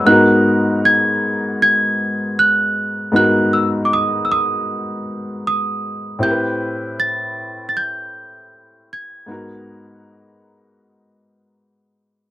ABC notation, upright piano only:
X:1
M:4/4
L:1/8
Q:"Swing 16ths" 1/4=78
K:G#m
V:1 name="Upright piano"
[G,,B,DFA]8 | [G,,B,DFA]8 | [=A,,=CE=G^AB]8 | [G,,B,DFA]8 |]